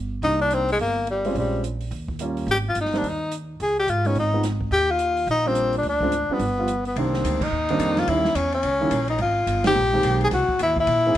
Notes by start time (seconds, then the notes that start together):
Already playing: G1
0.22 C2 G3 A#3 D4 D#4, open hi-hat
0.41 D4
0.50 C4, closed hi-hat
0.68 G#3, open hi-hat
0.79 G1 A#3, open hi-hat
1.07 G3, closed hi-hat
1.25 G#3 C4 C#4 F4, open hi-hat
1.35 A#1 G3, open hi-hat
1.64 closed hi-hat
1.81 open hi-hat
1.91 D#2, open hi-hat
2.08 kick
2.19 G3 A#3 C#4 F4, closed hi-hat
2.37 open hi-hat
2.46 G#1, open hi-hat
2.51 G4
2.68 F4
2.75 G1, closed hi-hat
2.81 D#4
2.85 snare
2.92 G3 A#3 C4 D#4, snare, open hi-hat
2.98 D4
3.02 D#2, open hi-hat
3.08 D#4
3.32 closed hi-hat
3.60 C#2 G#4, open hi-hat
3.79 G4
3.87 G#2 F4, closed hi-hat
4.05 F3 G#3 B3 C#4 D#4, open hi-hat
4.15 G#1, open hi-hat
4.19 D#4
4.33 F3 G#3 B3 D#4
4.43 snare, closed hi-hat
4.61 kick
4.71 D#2 G4, open hi-hat
4.90 F4
4.99 closed hi-hat
5.17 open hi-hat
5.27 A#1 D#4, open hi-hat
5.45 F3 G3 A#3 C4 D4
5.55 closed hi-hat
5.73 open hi-hat
5.78 D4
5.82 D2, open hi-hat
5.89 D4
6.01 F3 G#3 C4 D4, kick
6.12 closed hi-hat
6.29 F3 G3 B3 D4, muted upright bass stroke
6.33 B3
6.39 G1, open hi-hat
6.58 F3 G3 B3 F4
6.68 closed hi-hat
6.85 B3, open hi-hat
6.96 C2 D#3 G3 A#3 C4 D4, ride
7.14 snare
7.24 D2, hi-hat pedal, ride
7.41 D#4, kick, crash
7.52 D#2
7.69 D#3 G3 A#3 C4 D4, ride
7.79 F2, hi-hat pedal, ride
7.97 F4, snare, ride
8.07 D#2 D#3 G3 A#3 C#4 E4, ride
8.25 snare
8.35 E2 C#4, hi-hat pedal, ride
8.52 C#4, ride
8.63 C#2, ride
8.81 D#3 G3 A#3 C#4 E4
8.91 A#1, hi-hat pedal, ride
9.08 D#4, ride
9.18 G#1 F4, ride
9.46 G1, hi-hat pedal, ride
9.64 D#3 G#3 A#3 C4 G4, snare, ride
9.75 A#1
9.93 D#3 G#3 A#3 C4 G4
10.03 B1, hi-hat pedal, ride
10.21 G#4, ride
10.31 C2 F#4, snare, ride
10.49 kick
10.59 D#2 E4, hi-hat pedal, ride
10.76 E4, kick
10.87 A#2, ride
11.06 E3 A#3 C4 D#4 G#4